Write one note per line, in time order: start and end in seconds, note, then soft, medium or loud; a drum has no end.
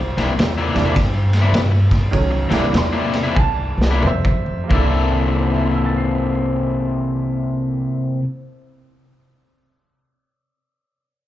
0.00 0.15 C2 medium
0.00 1.32 G4 medium
0.00 1.32 C5 medium
0.00 muted overdriven electric guitar stroke soft
0.17 0.36 C2 loud
0.17 0.31 C3 medium
0.17 0.32 A#3 medium
0.17 0.32 D4 medium
0.17 0.32 E4 loud
0.17 snare soft
0.17 ride medium
0.38 0.71 E2 medium
0.38 muted overdriven electric guitar stroke soft
0.38 snare loud
0.38 ride medium
0.58 0.79 C3 medium
0.58 0.79 A#3 medium
0.58 0.78 D4 medium
0.58 0.78 E4 medium
0.74 0.94 E2 medium
0.74 0.93 E3 medium
0.74 0.93 G3 medium
0.74 0.93 A#3 medium
0.74 0.93 D4 medium
0.74 snare soft
0.74 ride medium
0.85 0.94 C3 medium
0.85 0.95 A#3 medium
0.85 0.95 D4 medium
0.85 0.95 E4 loud
0.96 1.50 G2 medium
0.96 muted overdriven electric guitar stroke soft
0.96 kick loud
0.96 snare soft
0.96 ride medium
1.33 snare soft
1.33 ride medium
1.42 1.59 C3 medium
1.42 1.59 A#3 medium
1.42 1.59 D4 medium
1.42 1.59 E4 medium
1.53 1.87 G2 medium
1.53 snare loud
1.53 ride medium
1.71 muted overdriven electric guitar stroke soft
1.91 2.11 G2 medium
1.91 kick medium
1.91 snare soft
1.91 ride medium
2.11 2.47 C2 medium
2.11 2.46 D#3 medium
2.11 2.47 F#3 medium
2.11 2.47 A3 medium
2.11 2.47 C#4 medium
2.11 kick loud
2.11 ride medium
2.31 muted overdriven electric guitar stroke soft
2.49 2.71 C2 loud
2.49 2.65 C3 medium
2.49 3.87 E3 medium
2.49 3.87 G3 medium
2.49 2.65 A#3 medium
2.49 3.87 A#3 medium
2.49 2.65 D4 medium
2.49 3.87 D4 medium
2.49 2.65 E4 medium
2.49 snare soft
2.49 ride medium
2.72 3.32 E2 medium
2.72 muted overdriven electric guitar stroke soft
2.72 snare loud
2.72 ride medium
2.77 3.37 C6 loud
2.93 3.17 C3 medium
2.93 3.17 A#3 medium
2.93 3.16 D4 medium
2.93 3.16 E4 medium
3.13 snare soft
3.13 ride medium
3.24 3.35 C3 medium
3.24 3.36 A#3 medium
3.24 3.36 D4 medium
3.24 3.36 E4 loud
3.35 3.73 C2 medium
3.35 3.39 G#5 medium
3.35 muted overdriven electric guitar stroke soft
3.35 kick loud
3.39 4.01 A5 loud
3.78 3.99 C2 medium
3.78 snare medium
3.91 4.09 C3 medium
3.91 4.09 A#3 medium
3.91 4.09 D4 medium
3.91 4.09 E4 medium
4.02 4.42 F2 medium
4.02 mid tom medium
4.07 4.69 C5 medium
4.07 4.71 E5 loud
4.25 muted overdriven electric guitar stroke medium
4.25 kick medium
4.46 4.68 F2 medium
4.64 7.85 C3 medium
4.64 7.88 A#3 medium
4.70 7.87 C2 medium
4.70 8.20 C3 medium
4.70 8.22 A#3 medium
4.70 7.91 D4 medium
4.70 8.23 E4 loud
4.70 7.94 E4 medium
4.70 kick loud
4.74 8.24 A4 loud
4.74 7.98 A4 medium
5.40 8.58 C5 soft
5.48 8.66 E5 soft
5.56 8.73 A5 soft
5.65 8.82 C6 soft
5.76 8.93 E6 soft
5.86 9.03 A6 soft
5.97 9.15 C7 soft